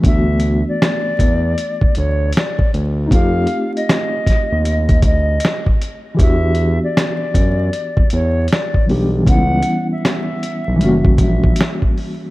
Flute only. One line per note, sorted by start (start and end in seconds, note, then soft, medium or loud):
0.06 0.64 E5 medium
0.68 1.99 D5 medium
1.97 2.31 C#5 medium
2.36 2.70 D5 medium
3.12 3.71 F5 loud
3.76 5.00 D#5 medium
5.05 5.64 D#5 medium
6.20 6.79 E5 medium
6.83 8.08 D5 medium
8.13 8.47 C#5 medium
8.51 8.85 D5 medium
9.28 9.87 F#5 loud
9.91 11.16 E5 medium
11.20 11.79 E5 medium